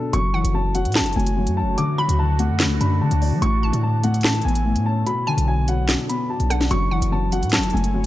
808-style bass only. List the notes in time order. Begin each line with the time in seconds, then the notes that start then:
0.13 F#1
0.44 F#1
0.85 A2
1.01 F#1
1.16 F#1
1.47 F#2
1.62 F#1
2.09 D2
2.50 F#2
2.65 D2
2.80 F#2
3.01 D3
3.11 D2
3.32 F#3
3.42 A1
3.73 A2
4.45 A1
4.76 A2
5.37 B1
6.40 B1
6.71 F#1
7.02 F#1
7.43 A2
7.58 F#1
7.74 F#1